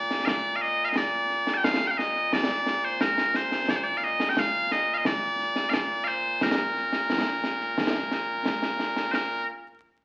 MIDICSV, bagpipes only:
0, 0, Header, 1, 2, 480
1, 0, Start_track
1, 0, Key_signature, -2, "major"
1, 0, Tempo, 681818
1, 674, Time_signature, 4, 2, 24, 8
1, 7074, End_track
2, 0, Start_track
2, 0, Title_t, "Bagpipes"
2, 0, Program_c, 0, 109
2, 0, Note_on_c, 0, 46, 89
2, 0, Note_on_c, 0, 74, 97
2, 177, Note_off_c, 0, 74, 0
2, 177, Note_on_c, 0, 77, 87
2, 200, Note_off_c, 0, 77, 0
2, 200, Note_on_c, 0, 74, 87
2, 393, Note_off_c, 0, 74, 0
2, 393, Note_on_c, 0, 77, 68
2, 433, Note_off_c, 0, 77, 0
2, 433, Note_on_c, 0, 75, 106
2, 597, Note_off_c, 0, 75, 0
2, 597, Note_on_c, 0, 77, 81
2, 628, Note_off_c, 0, 77, 0
2, 628, Note_on_c, 0, 75, 81
2, 683, Note_off_c, 0, 75, 0
2, 683, Note_on_c, 0, 74, 87
2, 1083, Note_on_c, 0, 81, 77
2, 1084, Note_off_c, 0, 74, 0
2, 1107, Note_off_c, 0, 81, 0
2, 1107, Note_on_c, 0, 79, 77
2, 1155, Note_off_c, 0, 79, 0
2, 1155, Note_on_c, 0, 77, 114
2, 1317, Note_off_c, 0, 77, 0
2, 1317, Note_on_c, 0, 79, 74
2, 1342, Note_off_c, 0, 79, 0
2, 1342, Note_on_c, 0, 77, 74
2, 1393, Note_off_c, 0, 77, 0
2, 1393, Note_on_c, 0, 75, 100
2, 1641, Note_off_c, 0, 75, 0
2, 1641, Note_on_c, 0, 74, 99
2, 2004, Note_off_c, 0, 74, 0
2, 2004, Note_on_c, 0, 72, 81
2, 2118, Note_off_c, 0, 72, 0
2, 2118, Note_on_c, 0, 70, 80
2, 2366, Note_off_c, 0, 70, 0
2, 2366, Note_on_c, 0, 72, 86
2, 2606, Note_off_c, 0, 72, 0
2, 2606, Note_on_c, 0, 74, 98
2, 2649, Note_off_c, 0, 74, 0
2, 2649, Note_on_c, 0, 72, 76
2, 2702, Note_off_c, 0, 72, 0
2, 2702, Note_on_c, 0, 74, 89
2, 2796, Note_off_c, 0, 74, 0
2, 2796, Note_on_c, 0, 77, 70
2, 2844, Note_off_c, 0, 77, 0
2, 2844, Note_on_c, 0, 75, 95
2, 3021, Note_off_c, 0, 75, 0
2, 3021, Note_on_c, 0, 79, 78
2, 3090, Note_off_c, 0, 79, 0
2, 3090, Note_on_c, 0, 77, 107
2, 3323, Note_off_c, 0, 77, 0
2, 3323, Note_on_c, 0, 75, 105
2, 3478, Note_off_c, 0, 75, 0
2, 3478, Note_on_c, 0, 77, 83
2, 3503, Note_off_c, 0, 77, 0
2, 3503, Note_on_c, 0, 75, 83
2, 3562, Note_off_c, 0, 75, 0
2, 3562, Note_on_c, 0, 74, 105
2, 4009, Note_off_c, 0, 74, 0
2, 4009, Note_on_c, 0, 77, 78
2, 4039, Note_off_c, 0, 77, 0
2, 4039, Note_on_c, 0, 74, 78
2, 4252, Note_off_c, 0, 74, 0
2, 4252, Note_on_c, 0, 77, 94
2, 4278, Note_off_c, 0, 77, 0
2, 4278, Note_on_c, 0, 72, 94
2, 4526, Note_off_c, 0, 72, 0
2, 4526, Note_on_c, 0, 70, 79
2, 6416, Note_off_c, 0, 70, 0
2, 6416, Note_on_c, 0, 72, 85
2, 6440, Note_off_c, 0, 72, 0
2, 6440, Note_on_c, 0, 70, 85
2, 6660, Note_off_c, 0, 46, 0
2, 6660, Note_off_c, 0, 70, 0
2, 7074, End_track
0, 0, End_of_file